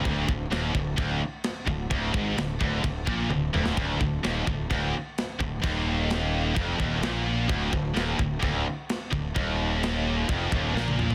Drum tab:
CC |x---x---x---x---|x---x---x-------|x---x---x---x---|x---x---x---x---|
SD |----o-------o---|----o----------o|----o-------o---|----o-------o---|
T1 |----------------|------------o---|----------------|----------------|
T2 |----------------|--------------o-|----------------|----------------|
FT |----------------|----------------|----------------|----------------|
BD |o-o---o-o-----o-|o-o---o-o-o-----|o-o---o-o-----o-|o-------o-o-----|

CC |x---x---x---x---|x---x---x-------|
SD |----o-------o---|----o-------o---|
T1 |----------------|-------------o--|
T2 |----------------|--------------o-|
FT |----------------|---------------o|
BD |o-o---o-o-----o-|o-------o-o-----|